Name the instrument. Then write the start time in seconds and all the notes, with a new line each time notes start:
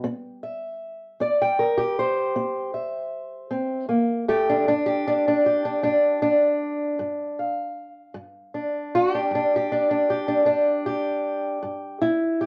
steel-string acoustic guitar
Already playing: G4
0.04 C4
0.43 E5
1.20 C4 D5
1.42 G5
1.59 A#4
1.78 G4
1.99 C5
2.36 C4
2.74 E5
3.51 C4
3.89 A#3
4.28 A3 G4
4.49 D4
4.68 G2 D4
4.86 G4
5.08 D4
5.28 D4
5.46 G4
5.65 D4
5.83 G2 D4
6.22 D4
6.99 G2
7.39 F5
8.14 G2
8.54 D4
8.95 F#4
9.14 D4 G4
9.31 G2
9.35 D4
9.56 G4
9.72 D4
9.91 D4
10.10 G4
10.28 D4
10.45 G2 D4
10.86 G4
11.63 G2
12.02 E4
12.41 G4